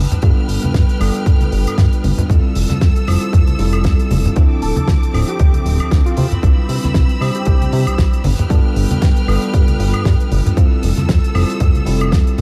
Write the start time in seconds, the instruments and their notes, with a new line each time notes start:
Already playing: string section B4 G5 F6
0.12 closed hi-hat, low conga
0.22 analog synth bass G2, tine electric piano G3 B3 D4 F4 A4, kick, closed hi-hat
0.48 analog synth bass G1, open hi-hat
0.63 analog synth bass G2, closed hi-hat, high conga
0.74 analog synth bass G2, kick, snare, closed hi-hat
0.89 closed hi-hat
0.99 analog synth bass G1, tine electric piano G3 B3 D4 F4 A4, open hi-hat, high woodblock
1.15 closed hi-hat
1.26 analog synth bass G2, kick, closed hi-hat
1.41 closed hi-hat, high conga
1.52 analog synth bass G1, open hi-hat
1.67 analog synth bass G2, closed hi-hat, high woodblock
1.78 analog synth bass G2, kick, snare, closed hi-hat
1.93 closed hi-hat
2.04 analog synth bass G1, open hi-hat, high conga
2.18 closed hi-hat, low conga
2.29 analog synth bass F2, tine electric piano G3 C4 E4 F4 A4, string section A4 E6, kick, closed hi-hat
2.55 analog synth bass F1, open hi-hat
2.69 analog synth bass F2, snare, closed hi-hat, high conga
2.81 analog synth bass F2, kick, snare, closed hi-hat
2.96 closed hi-hat
3.07 analog synth bass F1, tine electric piano G3 C4 E4 F4 C5, open hi-hat, high woodblock
3.21 closed hi-hat
3.33 analog synth bass F2, kick, closed hi-hat
3.47 closed hi-hat, high conga
3.58 analog synth bass F1, tine electric piano G3 C4 E4 F4 A4, open hi-hat
3.73 closed hi-hat, high woodblock
3.84 analog synth bass F2, kick, snare, closed hi-hat
3.99 closed hi-hat
4.11 analog synth bass F1, open hi-hat, high conga
4.25 closed hi-hat, low conga
4.36 analog synth bass D2, tine electric piano F3 C4 D4 E4 A4, string section C4 D6, kick, closed hi-hat
4.62 analog synth bass D1, analog synth lead A4, open hi-hat
4.76 analog synth bass D2, closed hi-hat, high conga
4.88 analog synth bass D2, kick, snare, closed hi-hat
5.03 closed hi-hat
5.13 analog synth bass D1, tine electric piano F3 C4 D4 E4 A4, open hi-hat, high woodblock
5.27 analog synth lead G4, closed hi-hat
5.39 analog synth bass D2, kick, closed hi-hat
5.54 closed hi-hat, high conga
5.65 analog synth bass D1, open hi-hat
5.80 analog synth bass D2, closed hi-hat, high woodblock
5.91 analog synth bass D2, kick, snare, closed hi-hat
6.06 analog synth lead F4, closed hi-hat
6.17 analog synth bass C3, analog synth lead F4, string section B5 E6, open hi-hat, high conga
6.32 closed hi-hat, low conga
6.42 analog synth bass C2, tine electric piano G3 C4 D4 E4 B4, kick, closed hi-hat
6.69 analog synth bass C3, open hi-hat
6.83 analog synth bass C2, snare, closed hi-hat, high conga
6.94 analog synth bass C2, kick, snare, closed hi-hat
7.09 closed hi-hat
7.20 analog synth bass C3, tine electric piano G3 C4 D4 E4 C5, open hi-hat, high woodblock
7.35 analog synth lead G4, closed hi-hat
7.45 analog synth bass C2, kick, closed hi-hat
7.62 closed hi-hat, high conga
7.72 analog synth bass C3, open hi-hat
7.87 analog synth bass C2, closed hi-hat, high woodblock
7.98 analog synth bass C2, kick, snare, closed hi-hat
8.13 closed hi-hat
8.24 analog synth bass G1, string section B4 G5 F6, open hi-hat, high conga
8.39 closed hi-hat, low conga
8.49 analog synth bass G2, tine electric piano G3 B3 D4 F4 A4, kick, closed hi-hat
8.76 analog synth bass G1, open hi-hat
8.91 closed hi-hat, high conga
9.02 analog synth bass G2, kick, snare, closed hi-hat
9.16 closed hi-hat
9.27 analog synth bass G1, tine electric piano G3 B3 D4 F4 A4, open hi-hat, high woodblock
9.42 closed hi-hat
9.54 analog synth bass G2, kick, closed hi-hat
9.68 closed hi-hat, high conga
9.79 analog synth bass G1, open hi-hat
9.94 closed hi-hat, high woodblock
10.05 analog synth bass G2, kick, snare, closed hi-hat
10.20 closed hi-hat
10.32 analog synth bass G1, open hi-hat, high conga
10.46 closed hi-hat, low conga
10.56 analog synth bass F2, tine electric piano G3 C4 E4 F4 A4, string section A4 E6, kick, closed hi-hat
10.83 analog synth bass F1, open hi-hat
10.97 analog synth bass F2, snare, closed hi-hat, high conga
11.09 analog synth bass F2, kick, snare, closed hi-hat
11.24 closed hi-hat
11.34 analog synth bass F1, tine electric piano G3 C4 E4 F4 C5, open hi-hat, high woodblock
11.50 closed hi-hat
11.60 analog synth bass F2, kick, closed hi-hat
11.75 closed hi-hat, high conga
11.85 analog synth bass F1, tine electric piano G3 C4 E4 F4 A4, open hi-hat
12.01 closed hi-hat, high woodblock
12.12 analog synth bass F2, kick, snare, closed hi-hat
12.27 closed hi-hat
12.38 analog synth bass F1, open hi-hat